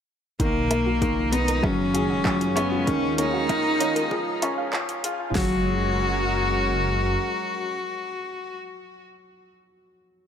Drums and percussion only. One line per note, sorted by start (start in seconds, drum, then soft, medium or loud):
0.40 kick medium
0.40 closed hi-hat soft
0.71 closed hi-hat medium
0.71 low woodblock medium
1.02 kick medium
1.02 closed hi-hat soft
1.33 closed hi-hat medium
1.48 closed hi-hat soft
1.63 kick loud
1.63 low woodblock medium
1.95 closed hi-hat medium
2.25 kick loud
2.25 clap medium
2.41 closed hi-hat soft
2.57 closed hi-hat medium
2.57 low woodblock medium
2.87 kick medium
2.87 closed hi-hat soft
3.18 closed hi-hat medium
3.49 kick loud
3.49 closed hi-hat soft
3.49 low woodblock medium
3.80 closed hi-hat medium
3.96 closed hi-hat soft
4.11 kick loud
4.42 closed hi-hat medium
4.42 low woodblock medium
4.73 kick loud
4.73 clap medium
4.89 closed hi-hat soft
5.04 closed hi-hat medium
5.35 kick medium
5.35 snare medium
5.35 open hi-hat medium